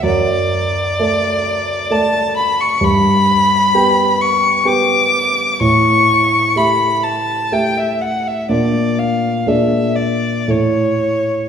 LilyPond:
<<
  \new Staff \with { instrumentName = "Violin" } { \time 3/4 \key a \mixolydian \tempo 4 = 63 d''2 a''8 b''16 cis'''16 | b''4. cis'''8 d'''4 | cis'''4 b''8 a''8 g''16 e''16 fis''16 e''16 | d''8 f''8 e''8 d''8 cis''4 | }
  \new Staff \with { instrumentName = "Grand piano" } { \time 3/4 \key a \mixolydian fis,4 <a a' d''>4 <a a' d''>4 | g,4 <b g' g''>4 <b g' g''>4 | a,4 <a g' e''>4 <a g' e''>4 | <bes, d' f' d''>4 <bes, d' aes' d''>4 <a, e' a'>4 | }
>>